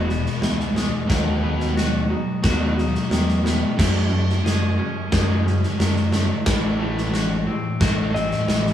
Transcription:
0.00 0.26 E1 medium
0.00 0.42 G#3 medium
0.00 1.76 F#4 medium
0.07 0.38 E2 medium
0.07 0.39 B2 medium
0.07 1.09 B3 medium
0.07 snare soft
0.26 snare soft
0.41 0.93 C#2 medium
0.41 0.72 E2 medium
0.41 0.72 B2 medium
0.41 1.09 E3 medium
0.41 snare medium
0.60 snare soft
0.74 1.05 E2 medium
0.74 1.06 B2 medium
0.74 1.09 G#3 medium
0.74 snare medium
1.07 2.11 D#2 medium
1.07 1.40 B2 loud
1.07 2.78 D#3 medium
1.07 1.40 F#3 loud
1.07 1.41 B3 loud
1.07 kick loud
1.07 snare loud
1.41 1.74 B2 medium
1.41 1.74 F#3 medium
1.41 1.74 B3 medium
1.41 3.11 B3 medium
1.60 snare soft
1.75 2.06 B2 medium
1.75 2.06 F#3 medium
1.75 2.43 F#4 medium
1.75 snare medium
2.09 2.40 B2 medium
2.09 2.40 F#3 medium
2.09 2.76 D#4 medium
2.43 2.95 D#2 loud
2.43 2.75 B2 loud
2.43 2.75 F#3 loud
2.43 2.76 B3 loud
2.43 4.44 F#4 medium
2.43 kick loud
2.43 snare medium
2.76 3.07 B2 medium
2.76 3.07 F#3 medium
2.76 3.78 D#4 medium
2.76 snare soft
2.95 snare soft
3.10 3.62 E2 medium
3.10 3.41 B2 medium
3.10 3.78 D#3 medium
3.10 3.41 F#3 medium
3.10 snare medium
3.28 snare soft
3.43 3.74 B2 medium
3.43 3.75 F#3 medium
3.43 3.78 B3 medium
3.43 snare medium
3.76 4.09 F#2 loud
3.76 5.46 F#2 medium
3.76 4.80 F#2 medium
3.76 4.09 C#3 loud
3.76 4.10 F#3 medium
3.76 kick loud
3.76 snare loud
3.76 crash medium
4.10 4.41 F#2 medium
4.10 4.42 C#3 medium
4.10 5.80 A3 medium
4.29 snare soft
4.44 4.75 F#2 medium
4.44 4.76 C#3 medium
4.44 5.11 G#4 medium
4.44 snare medium
4.78 5.09 F#2 medium
4.78 5.09 C#3 medium
4.78 5.44 C#4 medium
5.12 5.44 F#2 loud
5.12 5.63 F#2 loud
5.12 5.44 C#3 loud
5.12 5.44 F#3 loud
5.12 6.47 G#4 medium
5.12 kick loud
5.12 snare loud
5.45 5.76 F#2 medium
5.45 5.76 C#3 medium
5.45 6.47 C#4 medium
5.45 snare soft
5.63 snare soft
5.79 6.10 F#2 medium
5.79 6.30 F#2 medium
5.79 6.10 C#3 medium
5.79 7.50 F#3 medium
5.79 snare loud
5.96 snare soft
6.12 6.44 F#2 medium
6.12 6.44 C#3 medium
6.12 6.46 A3 medium
6.12 snare medium
6.46 7.48 A1 loud
6.46 8.14 A2 medium
6.46 6.78 A2 loud
6.46 6.79 E3 loud
6.46 6.79 A3 medium
6.46 kick loud
6.46 snare loud
6.79 7.11 A2 loud
6.79 7.12 E3 loud
6.79 8.48 A3 medium
6.79 7.12 A3 loud
6.98 snare soft
7.13 7.44 A2 medium
7.13 7.44 E3 medium
7.13 7.79 F#4 medium
7.13 snare medium
7.47 7.78 A2 medium
7.47 7.78 E3 medium
7.47 8.13 C4 medium
7.80 8.31 A1 loud
7.80 8.12 A2 loud
7.80 8.13 E3 loud
7.80 8.13 A3 loud
7.80 8.73 F#4 medium
7.80 kick loud
7.80 snare loud
8.14 8.45 A2 medium
8.14 8.45 E3 medium
8.14 8.73 C4 medium
8.14 8.73 D#5 medium
8.14 snare soft
8.31 snare soft
8.47 8.73 A1 medium
8.47 8.73 A2 medium
8.47 8.73 E3 medium
8.47 8.73 E3 loud
8.47 snare medium
8.67 snare soft

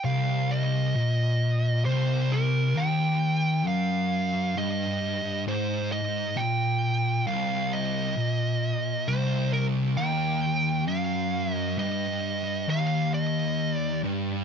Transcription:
0.05 0.94 C2 loud
0.05 0.51 F5 loud
0.51 1.82 D#5 loud
0.95 1.84 A#2 loud
1.85 2.75 C2 loud
1.85 2.32 C5 medium
2.32 2.78 A#4 medium
2.76 3.66 D#2 loud
2.76 3.67 G5 medium
3.66 4.55 F#2 loud
3.66 4.60 F5 loud
4.57 5.46 G2 loud
4.57 5.43 D#5 loud
5.47 6.36 G#2 loud
5.47 5.92 C5 medium
5.92 6.38 D#5 medium
6.37 7.26 A#2 loud
6.37 7.27 G5 loud
7.27 8.16 C2 loud
7.27 7.73 F5 loud
7.73 9.11 D#5 loud
8.17 9.06 A#2 loud
9.08 9.96 C2 loud
9.08 9.53 C5 medium
9.53 9.65 A#4 medium
9.97 10.88 D#2 loud
9.97 10.83 G5 loud
10.88 11.77 F#2 loud
10.88 11.54 F5 loud
11.54 11.79 D#5 loud
11.78 12.67 G2 loud
11.78 12.70 D#5 medium
12.67 14.02 D#2 loud
12.67 13.14 F5 loud
13.14 13.72 D#5 medium
13.72 14.00 D5 medium
14.04 14.44 G2 loud

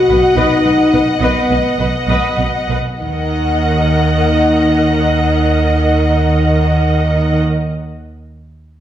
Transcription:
0.00 0.34 F#4 medium
0.00 2.74 D#5 soft
0.00 2.74 F#5 soft
0.09 0.17 B1 soft
0.09 0.17 B2 soft
0.09 0.18 B4 soft
0.35 0.44 B1 medium
0.35 0.44 B2 medium
0.35 1.04 D#4 medium
0.35 0.62 B4 medium
0.35 0.62 D#5 medium
0.64 0.73 B1 soft
0.64 0.72 B2 soft
0.64 0.73 B4 soft
0.64 0.73 D#5 soft
0.92 1.00 B1 soft
0.92 1.00 B2 soft
0.92 1.02 B4 soft
1.20 1.29 B1 soft
1.20 1.28 B2 soft
1.20 1.77 B3 soft
1.20 1.48 B4 soft
1.20 1.48 D#5 soft
1.49 1.57 B1 soft
1.49 1.58 B2 soft
1.49 1.58 B4 soft
1.49 1.59 D#5 soft
1.78 1.86 B1 soft
1.78 1.87 B2 soft
1.78 1.88 B4 soft
2.07 2.15 B1 soft
2.07 2.16 B2 soft
2.07 2.36 B4 soft
2.07 2.36 D#5 soft
2.37 2.45 B1 soft
2.37 2.46 B2 soft
2.37 2.47 B4 soft
2.37 2.47 D#5 soft
2.69 2.77 B1 soft
2.69 2.77 B2 soft
2.69 2.79 B4 soft
2.99 7.40 D#2 soft
2.99 7.40 D#3 soft
2.99 7.38 D#4 soft
2.99 7.42 A#4 soft
2.99 7.38 D#5 soft
2.99 7.42 D#5 soft
2.99 7.39 F#5 soft

